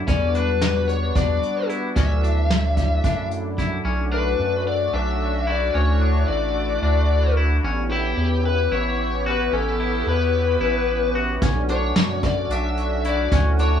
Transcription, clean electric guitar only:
0.08 C#4
0.35 D4
1.16 D4
1.70 E4
1.97 C#4
2.23 D4
3.04 D4
3.59 E4
3.85 C#4
4.12 D4
4.94 D4
5.47 E4
5.74 C#4
6.01 D4
6.83 D4
7.37 E4
7.64 C#4
7.92 E4
8.72 E4
9.26 F#4
9.53 C#4
9.80 E4
10.61 E4
11.15 F#4
11.43 C#4
11.70 D4
12.51 D4
13.05 E4
13.32 C#4
13.60 D4

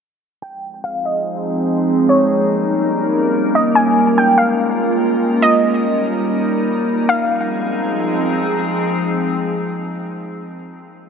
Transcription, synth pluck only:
0.42 G5
0.84 F5
1.05 D#5
2.09 C#5
3.55 D#5
3.75 G#5
4.18 G5
4.38 F5
5.42 D#5
7.09 F5

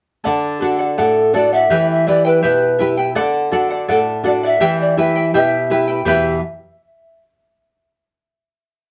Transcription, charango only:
0.24 A4 D5 F#5
0.60 A4 D5 F#5
0.79 D5 F#5
0.98 A4 D5 F#5
1.34 A4 D5 F#5
1.53 D5 F#5
1.70 E4 G4 B4 E5 G5
2.07 E4 B4 E5 G5
2.25 E4 B4 G5
2.43 E4 G4 B4 E5 G5
2.79 E4 B4 E5 G5
2.97 E4 B4 G5
3.15 A4 D5 F#5
3.52 A4 D5 F#5
3.71 D5 F#5
3.88 A4 D5 F#5
4.24 A4 D5 F#5
4.43 D5 F#5
4.60 E4 G4 B4 E5 G5
4.97 E4 B4 E5 G5
5.16 E4 B4 G5
5.34 E4 G4 B4 E5 G5
5.70 E4 B4 E5 G5
5.88 E4 B4 G5
6.05 E4 G4 B4 E5 G5

